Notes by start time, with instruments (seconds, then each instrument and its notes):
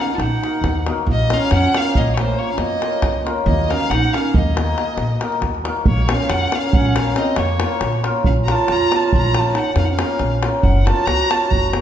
0.00 hammered dulcimer A#3 D#4 F#4 A#4, clarinet C#4, violin F5
0.14 clarinet F4, violin A5
0.18 upright bass A#1, clarinet D#4, violin F#5, davul high
0.42 hammered dulcimer A#3 D#4 F#4 A#4, davul high
0.61 upright bass D#2, davul high, davul low
0.86 hammered dulcimer A#3 D#4 F#4 A#4, davul high
1.07 upright bass A#1, clarinet A#3, davul low
1.11 violin D#5
1.19 davul high
1.30 hammered dulcimer A#3 C#4 F4 A#4, clarinet C#4, violin F5, davul high
1.51 upright bass F2, clarinet C#4, violin F#5, davul high
1.63 davul high
1.75 hammered dulcimer A#3 C#4 F4 A#4, clarinet C#4, violin F5, davul high
1.95 upright bass A#1, clarinet A#3, violin D#5, davul low
2.13 clarinet A#3, hammered dulcimer A#3, violin C#5
2.17 clarinet A3, hammered dulcimer C#4 F4 A#4, violin C5, davul high
2.28 davul high
2.38 hammered dulcimer A#3 C#4 F4 A#4, clarinet A#3, violin C#5
2.51 clarinet C#4, violin F5
2.57 upright bass F2, clarinet A#3, violin D#5, davul high
2.80 hammered dulcimer A#3 C#4 F4 A#4, davul high
3.02 upright bass C#2, davul high, davul low
3.24 hammered dulcimer A#3 C#4 F4 A#4, davul high
3.46 upright bass D#2, clarinet A#3, violin D#5, davul low
3.59 davul high
3.68 hammered dulcimer A#3 D#4 F#4 A#4, clarinet C#4, violin F5, davul high
3.80 davul high
3.90 upright bass A#1, clarinet D#4, violin F#5, davul high
4.13 hammered dulcimer A#3 D#4 F#4 A#4, clarinet C#4, violin F5, davul high
4.34 upright bass D#2, clarinet A#3, violin D#5, davul low
4.56 hammered dulcimer A#3 D#4 F#4 A#4, davul high
4.67 davul high
4.75 hammered dulcimer A#3 D#4 F#4 A#4, davul high
4.97 upright bass A#1, davul high
5.10 davul high
5.19 hammered dulcimer A#3 D#4 F#4 A#4, davul high
5.32 davul high
5.41 upright bass D#2, davul high, davul low
5.55 davul high
5.64 hammered dulcimer A#3 D#4 F#4 A#4, davul high
5.85 upright bass A#1, clarinet A#3, violin C#5, davul low
5.98 davul high
6.07 hammered dulcimer A#3 C#4 F4 A#4, violin F5, davul high
6.12 clarinet C#4
6.30 upright bass F2, clarinet C#4, violin F#5, davul high
6.41 davul high
6.52 hammered dulcimer A#3 C#4 F4 A#4, clarinet C#4, violin F5, davul high
6.63 davul high
6.73 upright bass A#1, clarinet C#4, violin F#5, davul low
6.85 davul high
6.96 hammered dulcimer A#3 C#4 F4 A#4, clarinet C#4, violin F5, davul high
7.06 davul high
7.16 hammered dulcimer A#3 C#4 F4 A#4, clarinet C4, violin D#5, davul high
7.36 upright bass F2, clarinet A#3, violin C#5, davul high
7.59 hammered dulcimer A#3 C#4 F4 A#4, davul high
7.81 upright bass A#1, davul high
7.92 davul high
8.03 hammered dulcimer A#3 C#4 F4 A#4, davul high
8.24 upright bass A#1, clarinet C#4, violin F5, davul low
8.36 davul high
8.44 hammered dulcimer A#3 C#4 F4, clarinet F#4, violin A#5
8.48 clarinet F4, hammered dulcimer A#4, violin A5, davul high
8.68 upright bass F2, clarinet F4, violin A#5, davul high
8.80 davul high
8.91 hammered dulcimer A#3 C#4 F4 A#4, clarinet F4, davul high
8.96 violin A5
9.03 davul high
9.13 upright bass A#1, clarinet F4, davul low
9.17 violin A#5
9.24 davul high
9.34 hammered dulcimer A#3 C#4 F4 A#4, clarinet F4, violin A5, davul high
9.46 davul high
9.54 hammered dulcimer A#3 C#4 F4 A#4, clarinet D#4, violin F#5, davul high
9.74 upright bass F2, clarinet C#4, violin F5, davul high
9.81 clarinet D#4, violin F#5
9.91 clarinet C#4, violin F5
9.97 hammered dulcimer A#3 C#4 F4 A#4, davul high
10.19 upright bass A#1, davul high
10.32 davul high
10.42 hammered dulcimer A#3 C#4 F4 A#4, davul high
10.61 upright bass F#1, clarinet C#4, violin F#5, davul low
10.75 davul high
10.85 hammered dulcimer A#3 C#4 F#4 A#4, clarinet F4, violin A5, davul high
11.06 upright bass C#2, clarinet F#4, violin A#5, davul high
11.19 davul high
11.29 hammered dulcimer A#3 C#4 F#4 A#4, clarinet F4, violin A5, davul high
11.41 davul high
11.49 upright bass F#1, clarinet F#4, violin A#5, davul low
11.62 davul high
11.72 hammered dulcimer A#3 C#4 F#4 A#4, davul high